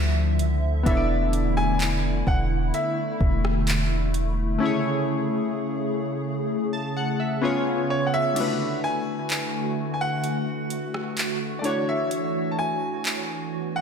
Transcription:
0.00 0.41 D2 loud
0.00 4.57 D3 medium
0.00 0.83 F3 medium
0.00 0.81 A3 medium
0.00 0.82 D4 medium
0.00 0.83 E4 medium
0.00 0.84 F4 medium
0.00 0.88 D5 medium
0.00 0.83 E5 medium
0.39 0.65 C#2 loud
0.39 closed hi-hat medium
0.63 0.85 D2 loud
0.83 2.23 E1 loud
0.83 7.38 A3 medium
0.83 4.56 B3 medium
0.83 4.57 D4 medium
0.83 4.57 E4 medium
0.83 4.58 E4 medium
0.83 1.53 E5 medium
0.83 kick loud
0.83 closed hi-hat medium
0.89 4.59 A4 medium
0.89 0.95 C#5 medium
0.97 4.63 D5 medium
1.33 closed hi-hat medium
1.57 2.29 G#5 loud
1.57 cross-stick medium
1.80 clap loud
1.80 closed hi-hat medium
2.27 2.72 E1 loud
2.27 2.38 F#5 medium
2.27 kick medium
2.74 4.11 E5 medium
2.74 closed hi-hat medium
3.21 4.57 E1 loud
3.21 kick medium
3.45 cross-stick loud
3.67 clap loud
3.67 closed hi-hat medium
4.14 closed hi-hat medium
4.58 7.40 C#3 medium
4.58 7.37 A3 medium
4.58 7.38 C#4 medium
4.58 7.39 E4 medium
4.58 7.39 G#4 medium
4.64 7.40 G#4 medium
4.64 7.41 C#5 medium
6.73 6.95 A5 medium
6.97 7.18 F#5 medium
7.20 7.64 E5 medium
7.42 8.35 C#3 medium
7.42 8.36 B3 medium
7.42 8.35 B3 medium
7.42 8.36 C#4 medium
7.42 8.35 F4 medium
7.42 8.37 F4 medium
7.42 8.37 G#4 medium
7.42 8.38 C#5 medium
7.90 8.05 C#5 medium
8.07 8.13 F#5 medium
8.14 8.86 E5 loud
8.33 11.61 D3 medium
8.33 8.41 G#3 medium
8.33 11.61 A3 medium
8.33 11.60 D4 medium
8.33 11.61 E4 medium
8.33 13.81 F#4 medium
8.33 closed hi-hat medium
8.33 crash medium
8.39 11.60 A3 medium
8.39 11.62 F#4 medium
8.39 11.63 B4 medium
8.84 9.90 G#5 loud
9.30 clap loud
9.30 closed hi-hat medium
9.94 10.01 G#5 medium
10.01 11.64 F#5 loud
10.24 closed hi-hat medium
10.70 closed hi-hat medium
10.94 cross-stick loud
11.17 clap loud
11.17 closed hi-hat medium
11.59 13.81 A3 medium
11.59 11.65 D5 medium
11.63 13.81 E3 medium
11.63 13.81 D4 medium
11.63 13.81 E4 medium
11.63 13.81 F#4 medium
11.63 13.50 C#5 medium
11.63 11.89 C#5 medium
11.63 closed hi-hat medium
11.69 13.81 C#5 medium
11.89 12.48 E5 medium
12.11 closed hi-hat medium
12.51 12.58 A5 medium
12.59 13.79 G#5 loud
13.05 clap loud
13.05 closed hi-hat medium
13.53 13.81 B3 medium
13.76 13.81 F#5 loud

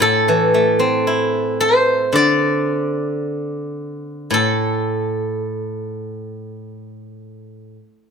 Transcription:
0.00 2.14 A2 soft
0.00 2.21 A4 medium
0.28 2.42 E3 soft
0.54 2.69 A3 soft
0.79 2.95 C4 soft
1.07 3.23 E4 soft
1.60 3.59 C5 medium
2.13 4.32 D3 soft
2.13 4.29 D5 medium
4.31 7.75 A2 soft
4.31 7.73 A4 medium

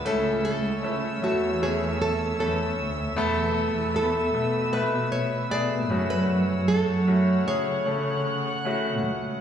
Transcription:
0.00 7.44 E6 medium
0.05 0.60 C#2 loud
0.05 1.19 C#3 medium
0.05 0.80 A3 medium
0.05 0.80 C#4 medium
0.05 0.80 E4 medium
0.05 0.44 A4 medium
0.05 0.81 A4 medium
0.05 3.14 C#5 medium
0.05 5.87 E5 medium
0.45 1.25 A4 medium
0.64 1.19 C#2 medium
0.83 1.21 A3 medium
0.83 1.21 C#4 medium
0.83 1.21 E4 medium
0.83 1.21 A4 medium
1.22 2.36 E2 medium
1.22 1.60 A3 medium
1.22 1.60 C#4 medium
1.22 1.60 E4 medium
1.22 1.63 F#4 medium
1.22 1.60 A4 medium
1.61 2.35 A3 medium
1.61 2.36 C#4 medium
1.61 2.36 E4 medium
1.61 2.01 G#4 medium
1.61 2.36 C#5 medium
2.02 2.39 A4 medium
2.39 2.76 E2 medium
2.39 3.13 A3 medium
2.39 3.13 C#4 medium
2.39 3.14 E4 medium
2.39 2.94 A4 medium
2.39 3.14 A4 medium
2.79 3.15 D2 medium
3.16 3.71 E2 loud
3.16 4.30 B2 medium
3.16 3.91 A3 loud
3.16 3.91 B3 loud
3.16 3.91 E4 medium
3.16 3.91 A4 loud
3.16 5.89 B4 medium
3.75 4.30 E2 medium
3.94 4.32 A3 medium
3.94 4.32 B3 medium
3.94 4.32 E4 medium
3.94 4.32 A4 medium
3.94 4.72 A4 medium
4.34 5.48 B2 medium
4.34 4.71 A3 medium
4.34 4.71 B3 medium
4.34 4.72 E4 medium
4.34 4.72 A4 medium
4.72 5.47 A3 medium
4.72 5.48 B3 medium
4.72 5.48 E4 medium
4.72 4.83 B4 medium
4.72 5.48 B4 medium
5.12 5.51 C#5 loud
5.50 5.91 B2 medium
5.50 5.88 A3 medium
5.50 5.90 B3 medium
5.50 5.89 E4 medium
5.50 5.91 G#4 medium
5.50 6.10 D5 loud
5.90 6.84 F#2 medium
5.90 7.04 C#3 medium
5.90 7.02 A3 medium
5.90 7.02 C#4 medium
5.90 7.02 E4 medium
5.90 7.03 F#4 medium
5.90 9.41 C#5 medium
5.90 9.41 F#5 medium
6.10 6.68 B4 medium
6.68 7.47 A4 medium
6.88 7.44 F#2 medium
7.07 7.44 A3 medium
7.07 7.45 C#4 medium
7.07 7.45 E4 medium
7.07 7.46 F#4 medium
7.46 8.62 C#3 medium
7.46 7.84 A3 medium
7.46 7.85 C#4 medium
7.46 7.85 E4 medium
7.46 7.85 G#4 medium
7.46 8.63 C#5 medium
7.46 9.41 F#6 medium
7.86 8.62 A3 medium
7.86 8.62 C#4 medium
7.86 8.63 E4 medium
7.86 8.63 A4 medium
8.65 9.06 C#3 medium
8.65 9.41 A3 medium
8.65 9.41 C#4 medium
8.65 9.41 E4 medium
8.65 9.41 F#4 medium
9.06 9.41 C#2 medium

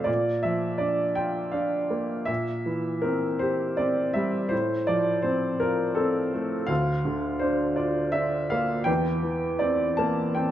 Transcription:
0.00 0.10 A3 soft
0.00 0.10 F4 soft
0.00 0.10 E5 soft
0.00 0.10 F5 medium
0.04 2.24 A#2 soft
0.04 0.43 D5 medium
0.43 1.04 F3 soft
0.43 0.80 E5 medium
0.78 1.40 D4 soft
0.78 1.17 D5 medium
1.15 1.77 F4 soft
1.15 1.54 G5 medium
1.52 2.13 D4 soft
1.52 2.27 F5 soft
1.90 2.28 A#3 soft
2.25 4.47 A#2 soft
2.25 3.03 E5 medium
2.66 3.27 E3 soft
3.02 3.64 C4 soft
3.02 3.41 A#4 medium
3.39 4.01 G4 soft
3.39 3.78 C5 medium
3.77 4.38 C4 soft
3.77 4.15 D5 medium
4.13 4.52 G3 soft
4.13 4.51 E5 medium
4.49 6.65 A2 soft
4.49 4.87 C5 medium
4.87 5.47 F3 soft
4.87 5.24 D5 medium
5.22 5.82 C4 soft
5.22 5.60 C5 medium
5.60 6.20 F4 soft
5.60 5.97 A#4 medium
5.95 6.55 C4 soft
5.95 6.32 A4 medium
6.33 6.70 A3 soft
6.67 8.83 D2 medium
6.67 7.40 F5 medium
7.05 7.63 D3 soft
7.39 8.00 D4 soft
7.39 7.77 C5 medium
7.76 8.36 F4 soft
7.76 8.14 D5 soft
8.12 8.73 D4 soft
8.12 8.50 E5 medium
8.50 8.88 A#3 soft
8.50 8.87 F5 medium
8.84 10.51 E2 soft
8.84 9.59 G5 medium
9.23 9.83 E3 soft
9.59 10.21 C4 soft
9.59 9.97 D5 medium
9.97 10.51 A#3 soft
9.97 10.35 A5 medium
10.35 10.51 C4 soft
10.35 10.51 G5 medium

